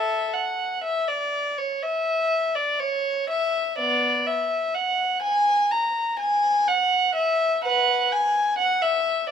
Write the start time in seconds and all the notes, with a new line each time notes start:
Already playing: A4 E5
0.34 F#5
0.84 E5
1.08 D5
1.58 C#5
1.82 E5
2.55 D5
2.80 C#5
3.30 E5
3.78 B3 D5
4.27 E5
4.74 F#5
5.22 G#5
5.71 A#5
6.19 G#5
6.67 F#5
7.15 E5
7.64 B4 F#5
8.12 G#5
8.58 F#5
8.82 E5